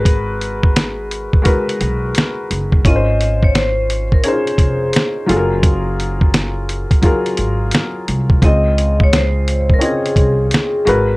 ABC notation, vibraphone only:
X:1
M:4/4
L:1/16
Q:"Swing 16ths" 1/4=86
K:Db
V:1 name="Vibraphone"
z16 | e3 d c3 B A6 z2 | z16 | e3 d c3 B A6 z2 |]